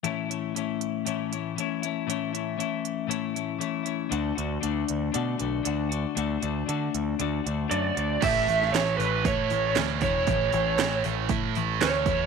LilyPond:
<<
  \new Staff \with { instrumentName = "Lead electric guitar" } { \time 4/4 \key a \major \tempo 4 = 117 r1 | r1 | r1 | r2. d''4 |
e''4 cis''8 b'8 cis''4 r8 cis''8~ | cis''4. r4. cis''4 | }
  \new Staff \with { instrumentName = "Clean electric guitar" } { \time 4/4 \key a \major <a, e a cis' e'>8 <a cis' e'>8 <e a cis' e'>4 <a, e a cis' e'>8 <a cis' e'>8 <e a cis' e'>8 <a cis' e'>8 | <a, e a cis' e'>8 <a cis' e'>8 <e a cis' e'>4 <a, e a cis' e'>8 <a cis' e'>8 <e a cis' e'>8 <a cis' e'>8 | <d a d' fis'>8 <a d' fis'>8 <d a d' fis'>4 <d a d' fis'>8 <a d' fis'>8 <d a d' fis'>8 <a d' fis'>8 | <d a d' fis'>8 <a d' fis'>8 <d a d' fis'>4 <d a d' fis'>8 <a d' fis'>8 <d a d' fis'>8 <a d' fis'>8 |
<a, e a>8 <a, e>8 <a, e>8 <a, e>8 <a, e>8 <a, e>8 <a, e>8 <a, e>8 | <a, e>8 <a, e>8 <a, e>8 <a, e>8 <a, e>8 <a, e>8 <a, e>8 <a, e>8 | }
  \new Staff \with { instrumentName = "Distorted electric guitar" } { \time 4/4 \key a \major r1 | r1 | r1 | r1 |
a,8 a8 e8 a8 e'8 a8 cis'8 e'8 | a,8 a8 e8 a8 e'8 a8 cis'8 e'8 | }
  \new Staff \with { instrumentName = "Picked electric bass" } { \clef bass \time 4/4 \key a \major r1 | r1 | d,8 d,8 d,8 d,8 b,8 b,,8 d,4 | d,8 d,8 d8 d,8 d,8 d,8 fis,8 d,8 |
a,,8 a,,8 a,,8 a,,8 a,8 a,,8 d,8 e,,8 | a,,8 a,,8 a,,8 a,,8 a,8 a,,8 d,8 e,8 | }
  \new DrumStaff \with { instrumentName = "Drums" } \drummode { \time 4/4 hh8 hh8 hh8 hh8 hh8 hh8 hh8 hh8 | hh8 hh8 hh8 hh8 hh8 hh8 hh8 hh8 | hh8 hh8 hh8 hh8 hh8 hh8 hh8 hh8 | hh8 hh8 hh8 hh8 hh8 hh8 hh8 hh8 |
<cymc hho bd>8 hho16 sn16 <hho sn>8 hho8 <hho bd>8 hho8 <hho sn>8 <hho bd>8 | <hho bd>8 hho8 <hho sn>8 hho8 <hho bd>8 hho8 <hho sn>8 <hho bd>8 | }
>>